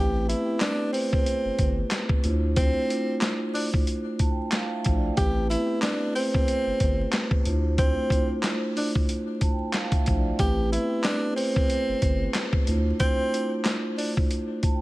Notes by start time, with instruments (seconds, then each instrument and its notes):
Already playing: sub bass A1, vibraphone A3 C4 E4 G4 B4, tenor saxophone G4
0.27 vibraphone A3 B3 E4 G4 B4, tenor saxophone E4, closed hi-hat
0.34 vibraphone C4
0.60 tenor saxophone D4, snare, clap, closed hi-hat
0.93 tenor saxophone C4, open hi-hat
1.13 kick
1.26 closed hi-hat
1.45 sub bass G1
1.59 sub bass G1, kick, closed hi-hat
1.91 snare, clap, closed hi-hat
2.09 kick
2.22 sub bass D2, vibraphone A3 D4 E4 F4 C5, closed hi-hat
2.56 tenor saxophone C4, kick, closed hi-hat
2.87 vibraphone A3 D4 E4 F4 C5, closed hi-hat
3.21 snare, clap, closed hi-hat
3.54 tenor saxophone D4, open hi-hat
3.74 kick
3.87 closed hi-hat
4.19 vibraphone A5, kick, closed hi-hat
4.31 vibraphone G5
4.52 vibraphone F5, snare, clap, closed hi-hat
4.74 vibraphone E5
4.82 vibraphone A3 D4 E4 F4 C5, kick, closed hi-hat
4.86 sub bass A#1
4.96 vibraphone D5
5.14 sub bass A1, vibraphone A3 C4 E4 G4 B4, tenor saxophone G4, kick, closed hi-hat
5.48 vibraphone A3 B3 E4 G4 B4, tenor saxophone E4, closed hi-hat
5.56 vibraphone C4
5.82 tenor saxophone D4, snare, clap, closed hi-hat
6.15 tenor saxophone C4, open hi-hat
6.34 kick
6.48 closed hi-hat
6.66 sub bass G1
6.80 sub bass G1, kick, closed hi-hat
7.12 snare, clap, closed hi-hat
7.31 kick
7.43 sub bass D2, vibraphone A3 D4 E4 F4 C5, closed hi-hat
7.78 tenor saxophone C4, kick, closed hi-hat
8.09 vibraphone A3 D4 E4 F4 C5, kick, closed hi-hat
8.43 snare, clap, closed hi-hat
8.77 tenor saxophone D4, open hi-hat
8.95 kick
9.09 closed hi-hat
9.41 vibraphone A5, kick, closed hi-hat
9.52 vibraphone G5
9.73 vibraphone F5, snare, clap, closed hi-hat
9.92 vibraphone E5, kick, closed hi-hat
10.03 vibraphone A3 D4 E4 F4 C5, closed hi-hat
10.07 sub bass A#1, kick
10.17 vibraphone D5
10.36 sub bass A1, vibraphone A3 C4 E4 G4 B4, tenor saxophone G4, kick, closed hi-hat
10.70 vibraphone A3 B3 E4 G4 B4, tenor saxophone E4, closed hi-hat
10.78 vibraphone C4
11.04 tenor saxophone D4, snare, clap, closed hi-hat
11.36 tenor saxophone C4, open hi-hat
11.56 kick
11.70 closed hi-hat
11.88 sub bass G1
12.02 sub bass G1, kick, closed hi-hat
12.34 snare, clap, closed hi-hat
12.53 kick
12.65 sub bass D2, vibraphone A3 D4 E4 F4 C5, closed hi-hat
13.00 tenor saxophone C4, kick, closed hi-hat
13.31 vibraphone A3 D4 E4 F4 C5, closed hi-hat
13.65 snare, clap, closed hi-hat
13.97 tenor saxophone D4, open hi-hat
14.17 kick
14.31 closed hi-hat
14.63 vibraphone A5, kick, closed hi-hat
14.74 vibraphone G5